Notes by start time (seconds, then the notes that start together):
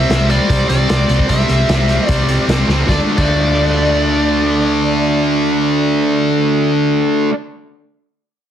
Already playing: G3 C4 E5
0.10 C2 C3 G3 C4, snare, closed hi-hat
0.30 C3 G3 C4 D5, closed hi-hat
0.49 C2 C3 G3 C4, kick, closed hi-hat
0.69 C2 C3 G3 C4 D5, closed hi-hat
0.89 C2 C3 G3 C4, snare, closed hi-hat
1.09 C2 C3 G3 C4, closed hi-hat
1.19 kick
1.28 C2 C3 G3 C4 E5, kick, closed hi-hat
1.40 snare
1.49 C2 C3 G3 C4, closed hi-hat
1.69 C2 C3 G3 C4, snare, closed hi-hat
1.89 C3 G3 C4, closed hi-hat
2.08 C2 C3 G3 C4 D5, kick, closed hi-hat
2.28 C3 G3 C4, closed hi-hat
2.48 C2 C3 G3 C4, snare, closed hi-hat
2.68 C#2 C3 G3 C4, snare
2.86 D2 D3 A3 D5, kick, snare
2.90 D4
3.17 D2 D3 A3 D5, kick, crash
3.21 D4